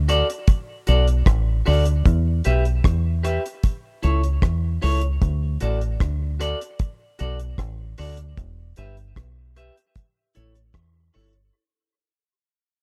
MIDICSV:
0, 0, Header, 1, 4, 480
1, 0, Start_track
1, 0, Key_signature, 2, "major"
1, 0, Tempo, 789681
1, 1249, Time_signature, 4, 2, 24, 8
1, 7794, End_track
2, 0, Start_track
2, 0, Title_t, "Clean electric guitar"
2, 0, Program_c, 0, 27
2, 51, Note_on_c, 0, 66, 86
2, 55, Note_on_c, 0, 69, 90
2, 58, Note_on_c, 0, 74, 102
2, 160, Note_off_c, 0, 66, 0
2, 162, Note_off_c, 0, 69, 0
2, 164, Note_off_c, 0, 74, 0
2, 529, Note_on_c, 0, 66, 70
2, 534, Note_on_c, 0, 69, 76
2, 538, Note_on_c, 0, 74, 87
2, 640, Note_off_c, 0, 66, 0
2, 642, Note_off_c, 0, 69, 0
2, 644, Note_off_c, 0, 74, 0
2, 1006, Note_on_c, 0, 66, 90
2, 1012, Note_on_c, 0, 69, 89
2, 1016, Note_on_c, 0, 74, 90
2, 1118, Note_off_c, 0, 66, 0
2, 1121, Note_off_c, 0, 69, 0
2, 1123, Note_off_c, 0, 74, 0
2, 1489, Note_on_c, 0, 67, 85
2, 1493, Note_on_c, 0, 71, 87
2, 1496, Note_on_c, 0, 76, 94
2, 1599, Note_off_c, 0, 67, 0
2, 1602, Note_off_c, 0, 71, 0
2, 1603, Note_off_c, 0, 76, 0
2, 1966, Note_on_c, 0, 67, 85
2, 1970, Note_on_c, 0, 71, 90
2, 1975, Note_on_c, 0, 76, 89
2, 2078, Note_off_c, 0, 67, 0
2, 2080, Note_off_c, 0, 71, 0
2, 2082, Note_off_c, 0, 76, 0
2, 2447, Note_on_c, 0, 64, 76
2, 2451, Note_on_c, 0, 69, 69
2, 2454, Note_on_c, 0, 73, 77
2, 2558, Note_off_c, 0, 64, 0
2, 2560, Note_off_c, 0, 69, 0
2, 2562, Note_off_c, 0, 73, 0
2, 2927, Note_on_c, 0, 64, 83
2, 2931, Note_on_c, 0, 69, 84
2, 2935, Note_on_c, 0, 73, 101
2, 3039, Note_off_c, 0, 64, 0
2, 3041, Note_off_c, 0, 69, 0
2, 3042, Note_off_c, 0, 73, 0
2, 3409, Note_on_c, 0, 66, 89
2, 3415, Note_on_c, 0, 69, 82
2, 3418, Note_on_c, 0, 74, 87
2, 3520, Note_off_c, 0, 66, 0
2, 3523, Note_off_c, 0, 69, 0
2, 3524, Note_off_c, 0, 74, 0
2, 3888, Note_on_c, 0, 66, 76
2, 3892, Note_on_c, 0, 69, 91
2, 3896, Note_on_c, 0, 74, 93
2, 3999, Note_off_c, 0, 66, 0
2, 4001, Note_off_c, 0, 69, 0
2, 4003, Note_off_c, 0, 74, 0
2, 4370, Note_on_c, 0, 66, 89
2, 4375, Note_on_c, 0, 69, 79
2, 4379, Note_on_c, 0, 74, 90
2, 4480, Note_off_c, 0, 66, 0
2, 4483, Note_off_c, 0, 69, 0
2, 4484, Note_off_c, 0, 74, 0
2, 4852, Note_on_c, 0, 66, 70
2, 4855, Note_on_c, 0, 69, 81
2, 4859, Note_on_c, 0, 74, 87
2, 4961, Note_off_c, 0, 66, 0
2, 4963, Note_off_c, 0, 69, 0
2, 4965, Note_off_c, 0, 74, 0
2, 5332, Note_on_c, 0, 67, 74
2, 5335, Note_on_c, 0, 71, 96
2, 5340, Note_on_c, 0, 76, 93
2, 5441, Note_off_c, 0, 67, 0
2, 5443, Note_off_c, 0, 71, 0
2, 5445, Note_off_c, 0, 76, 0
2, 5813, Note_on_c, 0, 67, 74
2, 5816, Note_on_c, 0, 71, 77
2, 5820, Note_on_c, 0, 76, 86
2, 5922, Note_off_c, 0, 67, 0
2, 5923, Note_off_c, 0, 71, 0
2, 5925, Note_off_c, 0, 76, 0
2, 6290, Note_on_c, 0, 64, 75
2, 6294, Note_on_c, 0, 69, 68
2, 6298, Note_on_c, 0, 73, 87
2, 6400, Note_off_c, 0, 64, 0
2, 6402, Note_off_c, 0, 69, 0
2, 6404, Note_off_c, 0, 73, 0
2, 6770, Note_on_c, 0, 64, 79
2, 6774, Note_on_c, 0, 69, 94
2, 6777, Note_on_c, 0, 73, 88
2, 6880, Note_off_c, 0, 64, 0
2, 6882, Note_off_c, 0, 69, 0
2, 6884, Note_off_c, 0, 73, 0
2, 7794, End_track
3, 0, Start_track
3, 0, Title_t, "Fingered electric bass"
3, 0, Program_c, 1, 33
3, 0, Note_on_c, 1, 38, 87
3, 132, Note_off_c, 1, 38, 0
3, 538, Note_on_c, 1, 35, 79
3, 745, Note_off_c, 1, 35, 0
3, 770, Note_on_c, 1, 33, 87
3, 981, Note_off_c, 1, 33, 0
3, 1018, Note_on_c, 1, 38, 91
3, 1225, Note_off_c, 1, 38, 0
3, 1253, Note_on_c, 1, 40, 114
3, 1462, Note_off_c, 1, 40, 0
3, 1498, Note_on_c, 1, 35, 77
3, 1705, Note_off_c, 1, 35, 0
3, 1733, Note_on_c, 1, 40, 85
3, 2052, Note_off_c, 1, 40, 0
3, 2457, Note_on_c, 1, 37, 102
3, 2665, Note_off_c, 1, 37, 0
3, 2692, Note_on_c, 1, 40, 83
3, 2902, Note_off_c, 1, 40, 0
3, 2939, Note_on_c, 1, 37, 88
3, 3146, Note_off_c, 1, 37, 0
3, 3174, Note_on_c, 1, 38, 110
3, 3383, Note_off_c, 1, 38, 0
3, 3417, Note_on_c, 1, 33, 83
3, 3625, Note_off_c, 1, 33, 0
3, 3653, Note_on_c, 1, 38, 87
3, 3972, Note_off_c, 1, 38, 0
3, 4380, Note_on_c, 1, 35, 75
3, 4587, Note_off_c, 1, 35, 0
3, 4614, Note_on_c, 1, 33, 93
3, 4823, Note_off_c, 1, 33, 0
3, 4858, Note_on_c, 1, 38, 86
3, 5065, Note_off_c, 1, 38, 0
3, 5094, Note_on_c, 1, 28, 100
3, 5303, Note_off_c, 1, 28, 0
3, 5338, Note_on_c, 1, 31, 87
3, 5545, Note_off_c, 1, 31, 0
3, 5574, Note_on_c, 1, 35, 80
3, 5892, Note_off_c, 1, 35, 0
3, 6302, Note_on_c, 1, 33, 82
3, 6507, Note_off_c, 1, 33, 0
3, 6532, Note_on_c, 1, 40, 83
3, 6742, Note_off_c, 1, 40, 0
3, 6781, Note_on_c, 1, 31, 85
3, 6987, Note_off_c, 1, 31, 0
3, 7794, End_track
4, 0, Start_track
4, 0, Title_t, "Drums"
4, 53, Note_on_c, 9, 42, 82
4, 114, Note_off_c, 9, 42, 0
4, 181, Note_on_c, 9, 42, 59
4, 241, Note_off_c, 9, 42, 0
4, 289, Note_on_c, 9, 42, 92
4, 290, Note_on_c, 9, 36, 104
4, 350, Note_off_c, 9, 42, 0
4, 351, Note_off_c, 9, 36, 0
4, 529, Note_on_c, 9, 42, 64
4, 589, Note_off_c, 9, 42, 0
4, 654, Note_on_c, 9, 42, 47
4, 714, Note_off_c, 9, 42, 0
4, 767, Note_on_c, 9, 36, 108
4, 771, Note_on_c, 9, 37, 112
4, 772, Note_on_c, 9, 42, 85
4, 827, Note_off_c, 9, 36, 0
4, 832, Note_off_c, 9, 37, 0
4, 833, Note_off_c, 9, 42, 0
4, 1009, Note_on_c, 9, 46, 72
4, 1070, Note_off_c, 9, 46, 0
4, 1127, Note_on_c, 9, 42, 57
4, 1187, Note_off_c, 9, 42, 0
4, 1249, Note_on_c, 9, 36, 111
4, 1251, Note_on_c, 9, 42, 92
4, 1310, Note_off_c, 9, 36, 0
4, 1312, Note_off_c, 9, 42, 0
4, 1485, Note_on_c, 9, 42, 65
4, 1546, Note_off_c, 9, 42, 0
4, 1612, Note_on_c, 9, 42, 44
4, 1673, Note_off_c, 9, 42, 0
4, 1728, Note_on_c, 9, 36, 127
4, 1733, Note_on_c, 9, 37, 127
4, 1733, Note_on_c, 9, 42, 100
4, 1789, Note_off_c, 9, 36, 0
4, 1793, Note_off_c, 9, 37, 0
4, 1794, Note_off_c, 9, 42, 0
4, 1973, Note_on_c, 9, 42, 82
4, 2034, Note_off_c, 9, 42, 0
4, 2101, Note_on_c, 9, 42, 58
4, 2162, Note_off_c, 9, 42, 0
4, 2209, Note_on_c, 9, 42, 92
4, 2211, Note_on_c, 9, 36, 103
4, 2270, Note_off_c, 9, 42, 0
4, 2272, Note_off_c, 9, 36, 0
4, 2450, Note_on_c, 9, 42, 70
4, 2510, Note_off_c, 9, 42, 0
4, 2574, Note_on_c, 9, 42, 50
4, 2635, Note_off_c, 9, 42, 0
4, 2688, Note_on_c, 9, 36, 114
4, 2692, Note_on_c, 9, 37, 113
4, 2693, Note_on_c, 9, 42, 89
4, 2749, Note_off_c, 9, 36, 0
4, 2753, Note_off_c, 9, 37, 0
4, 2754, Note_off_c, 9, 42, 0
4, 2931, Note_on_c, 9, 46, 84
4, 2991, Note_off_c, 9, 46, 0
4, 3048, Note_on_c, 9, 42, 56
4, 3108, Note_off_c, 9, 42, 0
4, 3170, Note_on_c, 9, 36, 114
4, 3171, Note_on_c, 9, 42, 89
4, 3231, Note_off_c, 9, 36, 0
4, 3232, Note_off_c, 9, 42, 0
4, 3406, Note_on_c, 9, 42, 69
4, 3467, Note_off_c, 9, 42, 0
4, 3534, Note_on_c, 9, 42, 40
4, 3594, Note_off_c, 9, 42, 0
4, 3649, Note_on_c, 9, 36, 121
4, 3652, Note_on_c, 9, 37, 123
4, 3653, Note_on_c, 9, 42, 99
4, 3710, Note_off_c, 9, 36, 0
4, 3713, Note_off_c, 9, 37, 0
4, 3713, Note_off_c, 9, 42, 0
4, 3894, Note_on_c, 9, 42, 83
4, 3955, Note_off_c, 9, 42, 0
4, 4020, Note_on_c, 9, 42, 54
4, 4081, Note_off_c, 9, 42, 0
4, 4130, Note_on_c, 9, 42, 88
4, 4132, Note_on_c, 9, 36, 114
4, 4191, Note_off_c, 9, 42, 0
4, 4193, Note_off_c, 9, 36, 0
4, 4370, Note_on_c, 9, 42, 65
4, 4431, Note_off_c, 9, 42, 0
4, 4495, Note_on_c, 9, 42, 51
4, 4556, Note_off_c, 9, 42, 0
4, 4608, Note_on_c, 9, 36, 108
4, 4612, Note_on_c, 9, 37, 105
4, 4613, Note_on_c, 9, 42, 89
4, 4669, Note_off_c, 9, 36, 0
4, 4672, Note_off_c, 9, 37, 0
4, 4674, Note_off_c, 9, 42, 0
4, 4849, Note_on_c, 9, 46, 84
4, 4910, Note_off_c, 9, 46, 0
4, 4967, Note_on_c, 9, 42, 60
4, 5028, Note_off_c, 9, 42, 0
4, 5091, Note_on_c, 9, 36, 116
4, 5091, Note_on_c, 9, 42, 95
4, 5151, Note_off_c, 9, 36, 0
4, 5152, Note_off_c, 9, 42, 0
4, 5326, Note_on_c, 9, 42, 65
4, 5386, Note_off_c, 9, 42, 0
4, 5453, Note_on_c, 9, 42, 43
4, 5513, Note_off_c, 9, 42, 0
4, 5570, Note_on_c, 9, 36, 112
4, 5574, Note_on_c, 9, 37, 114
4, 5574, Note_on_c, 9, 42, 91
4, 5630, Note_off_c, 9, 36, 0
4, 5634, Note_off_c, 9, 37, 0
4, 5635, Note_off_c, 9, 42, 0
4, 5814, Note_on_c, 9, 42, 76
4, 5875, Note_off_c, 9, 42, 0
4, 5941, Note_on_c, 9, 42, 54
4, 6002, Note_off_c, 9, 42, 0
4, 6052, Note_on_c, 9, 42, 94
4, 6053, Note_on_c, 9, 36, 106
4, 6112, Note_off_c, 9, 42, 0
4, 6113, Note_off_c, 9, 36, 0
4, 6291, Note_on_c, 9, 42, 64
4, 6352, Note_off_c, 9, 42, 0
4, 6415, Note_on_c, 9, 42, 51
4, 6476, Note_off_c, 9, 42, 0
4, 6528, Note_on_c, 9, 36, 107
4, 6531, Note_on_c, 9, 37, 113
4, 6532, Note_on_c, 9, 42, 92
4, 6589, Note_off_c, 9, 36, 0
4, 6592, Note_off_c, 9, 37, 0
4, 6593, Note_off_c, 9, 42, 0
4, 6769, Note_on_c, 9, 46, 76
4, 6830, Note_off_c, 9, 46, 0
4, 6887, Note_on_c, 9, 42, 54
4, 6948, Note_off_c, 9, 42, 0
4, 7794, End_track
0, 0, End_of_file